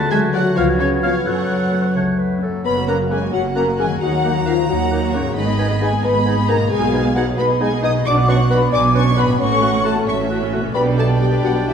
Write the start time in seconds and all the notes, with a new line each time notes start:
Already playing: D2 D3 A3 F#4 A5 F#6
0.10 F#3 G#3 G#4 E5 G#5
0.33 F#3 A3 F#4 A4 D5 F#5
0.55 C#2 C#3 F3 B3 F4 C#5 F5 G#6
0.79 C#3 C#4 A4 C#5
1.02 F3 B3 C#4 F4 B4 C#5 F5
1.25 F#2 F#3 F#4 A4 C#5 F#5 F#6
1.34 G#5
1.40 F#5
1.49 F#3
1.72 A3 C#4
1.96 C#2 A3 A4 C#5
2.19 F#4 B4
2.42 A3 C#4 A4
2.47 F#2
2.52 A#3
2.56 C#4
2.61 B3 A#4
2.65 F#1 F#2 F#3 C#4 B4 B5
2.76 A#3 F#4
2.87 F#3 A#3 C#4 A#4 F#5 A#5
2.99 A#3 F#4
3.10 F#3 G#3 A#3 C#4 G#4 F#5 G#5
3.23 A#3 F#4
3.33 F#1 F#2 F#3 C#4 F#4 F#5
3.45 A#3 F#4
3.55 F#3 A#3 C#4 A#4 F#5 A#5
3.68 A#3 F#4
3.78 F#3 G#3 A#3 C#4 G#4 F#5 G#5
3.83 D#3
3.88 A#3 F#4
3.92 D#4
3.97 A#4
4.01 D#2 F#3 D#4 F#4 F#5 A#5
4.14 A#3 F#4
4.24 F#3 A#3 D#4 F#5
4.36 A#3 F#4
4.45 F3 F#3 A#3 D#4 F4 F5 F#5
4.58 A#3 F#4
4.67 D#2 F#3 D#4 F#4 F#5
4.81 A#3 F#4
4.91 F#3 A#3 D#4 F#5
5.03 A#3 F#4
5.13 C#3 F#3 A#3 C#4 D#4 C#5 F#5
5.19 G#2
5.23 A#3 B3 F#4
5.27 D#4
5.32 G#4
5.36 G#1 G#2 D#3 G#3 D#4 D#5 B5
5.48 B3 G#4
5.58 G#3 B3 D#4 G#5
5.70 B3 G#4
5.81 G#3 B3 D#4 G#4 G#5
5.92 B3 G#4
6.03 G#1 G#2 G#3 B3 D#4 B4 D#5 B5
6.15 B3 G#4
6.26 G#3 B3 D#4 G#5
6.38 B3 G#4
6.48 G#3 A#3 B3 D#4 A#4 G#5 A#5
6.53 B2
6.57 B3 G#4
6.62 D#4
6.67 G#4 G#5
6.71 B1 B2 G#3 D#4 G#4 F5 G#5
6.79 B3 F#4 G#4
6.86 G#4
6.93 G#3 B3 D#4 G#5
7.05 B3 G#4
7.14 F#3 G#3 B3 D#4 F#4 F#5 G#5
7.27 B3 G#4
7.37 B1 B2 G#3 B3 D#4 B4 D#5 B5
7.49 B3 G#4
7.60 G#3 B3 D#4 G#4 G#5
7.72 B3 G#4
7.82 G#3 B3 D#4 D#5 G#5 D#6
7.88 B2
7.92 B3 G#4
7.97 F#4
8.05 B1 B2 D4 F#4 D5 F#5 D6
8.17 B3 D4
8.27 B3 C#4 D4 F#4 C#5 F#5 C#6
8.39 B3 D4
8.49 B3 D4 F#4 B4 F#5 B5
8.61 B3 D4
8.71 B1 B2 D4 F#4 D5 G#5 D6
8.84 B3 D4
8.94 B3 C#4 D4 F#4 C#5 F#5 C#6
9.06 B3 D4
9.16 B3 D4 F#4 B4 F#5 B5
9.22 A2
9.26 B3 C#4 D4
9.31 F#4
9.39 A1 A2 A3 C#4 F#4 C#5 F#5 C#6
9.52 C#4 A4
9.61 A3 F#4 F#5
9.74 C#4 A4
9.84 A3 F#4 A4 F#5 A5
9.97 C#4 A4
10.05 A1 A2 A3 C#4 F#4 C#5 E5 C#6
10.19 C#4 A4
10.29 A3 F#4 F#5
10.42 C#4 A4
10.52 A3 F#4 F#5
10.57 B2
10.61 C#4 D4 A4
10.66 G4
10.70 B4
10.75 B1 B2 G3 B3 D4 G4 B4 D5 G5 B5
10.87 D4 B4
10.98 A3 B3 G4 A4 A5
11.10 D4 B4
11.20 G3 B3 G4 G5
11.32 D4 B4
11.43 B1 B2 F#3 B3 F#4 G4 F#5
11.56 D4 B4
11.67 E3 B3 E4 G4 E5